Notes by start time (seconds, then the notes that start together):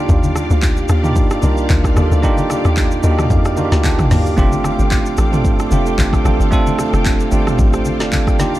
Already playing: A#3 D4 D#4 F4 G4 D5 F5 D6
0.09 D#2, kick, low conga, shaker
0.23 high conga, shaker
0.36 cross-stick, high conga, shaker
0.51 D2, shaker
0.62 kick, clap, low conga, shaker
0.77 shaker
0.89 D#2, cross-stick, shaker
1.03 A#3 D4 D#4 F4 G4, mid tom, high conga, shaker
1.16 kick, low conga, shaker
1.31 cross-stick, shaker
1.42 C2 A#3 D4 D#4 F4 A#4, high conga, shaker
1.57 shaker
1.69 D2, kick, clap, high conga, shaker
1.84 kick, cross-stick, shaker
1.95 D#2 A#3 D4 D#4 F4 A4, cross-stick, high conga, shaker
2.12 D2, shaker
2.22 A#3 D4 D#4 F4 G4, kick, low conga, shaker
2.38 high conga, shaker
2.50 cross-stick, high conga, shaker
2.65 D#2, cross-stick, shaker
2.77 kick, clap, low conga, shaker
2.91 shaker
3.03 D#2 A#3 D4 D#4 F4 F#4 D#5, shaker
3.11 G4
3.18 cross-stick, mid tom, high conga, shaker
3.30 F2 F5, kick, low conga, shaker
3.45 G5, cross-stick, shaker
3.56 A#3 D4 D#4 F4 F#4, high conga, shaker
3.65 G4
3.72 D2, snare, shaker
3.84 A5, kick, clap, high conga, shaker
3.99 kick, cross-stick, mid tom, shaker
4.11 D#2, snare, open hi-hat, high conga, shaker
4.26 shaker
4.36 F1 A3 C4 D4 F4 G4 A4 G5, kick, low conga, shaker
4.52 high conga, shaker
4.64 cross-stick, high conga, shaker
4.79 G1, shaker
4.91 kick, clap, low conga, shaker
5.06 shaker
5.17 A1, cross-stick, shaker
5.32 A3 C4 D4 F4 A4, mid tom, high conga, shaker
5.45 kick, low conga, shaker
5.59 cross-stick, shaker
5.70 F1 A3 C4 D4 F4 G4, high conga, shaker
5.86 shaker
5.98 G1, kick, clap, high conga, shaker
6.13 kick, cross-stick, shaker
6.24 A1 A3 C4 D4 F4 A4, cross-stick, high conga, shaker
6.40 G1, shaker
6.51 A3 C4 D4 F4 A4, kick, low conga, shaker
6.67 high conga, shaker
6.79 cross-stick, high conga, shaker
6.93 F1, cross-stick, shaker
7.05 kick, clap, low conga, shaker
7.20 shaker
7.31 G1 A3 C4 D4 F4 G4, shaker
7.47 cross-stick, mid tom, high conga, shaker
7.59 A1, kick, low conga, shaker
7.73 C5, cross-stick, shaker
7.85 high conga, shaker
8.00 F1 F4 D5, snare, shaker
8.12 A4 F5, kick, clap, high conga, shaker
8.27 G5, kick, cross-stick, shaker
8.39 D#2 A#3 D4 D#4 F4 G4 D5 D6, snare, high conga, shaker
8.55 shaker